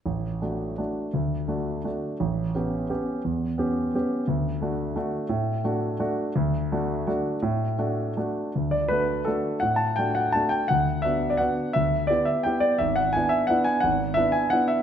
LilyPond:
\new Staff \with { instrumentName = "Grand piano" } { \time 3/4 \key d \major \tempo 4 = 170 << { r2. | r2. | r2. | r2. |
r2. | r2. | r2. | r2. |
r8 d''8 b'4 a'4 | fis''8 a''8 g''8 fis''8 a''8 g''8 | fis''4 e''8. d''16 fis''4 | e''4 d''8 e''8 g''8 d''8 |
e''8 fis''8 gis''8 e''8 fis''8 gis''8 | fis''4 e''8 gis''8 fis''8 e''8 | } \\ { a,,4 <a d' fis'>4 <a d' fis'>4 | d,4 <a d' fis'>4 <a d' fis'>4 | a,,4 <b cis' g'>4 <b cis' g'>4 | e,4 <b cis' g'>4 <b cis' g'>4 |
d,4 <a d' fis'>4 <a d' fis'>4 | a,4 <a d' fis'>4 <a d' fis'>4 | d,4 <a d' fis'>4 <a d' fis'>4 | a,4 <a d' fis'>4 <a d' fis'>4 |
d,4 <a d' fis'>4 <a d' fis'>4 | a,4 <a d' fis'>4 <a d' fis'>4 | d,4 <b d' fis'>4 <b d' fis'>4 | d,4 <b e' g'>4 <b e' g'>4 |
gis,,4 <b d' e'>4 <b d' e'>4 | gis,,4 <b d' e'>4 <b d' e'>4 | } >> }